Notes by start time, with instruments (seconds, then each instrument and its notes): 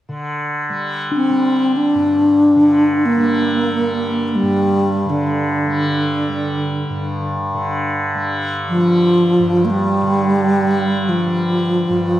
0.08 tanpura D3
0.69 tanpura G3
1.12 singing bowl D4
1.16 bass flute C4
1.30 tanpura G3
1.77 bass flute D4
1.95 tanpura G2
2.56 tanpura D3
3.06 bass flute A#3
3.18 tanpura G3
3.79 tanpura G3
4.28 bass flute A#3
4.35 bass flute G3
4.42 tanpura G2
5.05 tanpura D3
5.10 bass flute D3
5.67 tanpura G3
6.28 tanpura G3
6.90 tanpura G2
7.53 tanpura D3
8.15 tanpura G3
8.69 bass flute F3
8.77 tanpura G3
9.39 tanpura G2
9.65 bass flute A#3
9.70 bass flute G3
10.02 tanpura D3
10.63 tanpura G3
11.09 bass flute F3
11.27 tanpura G3
11.90 tanpura G2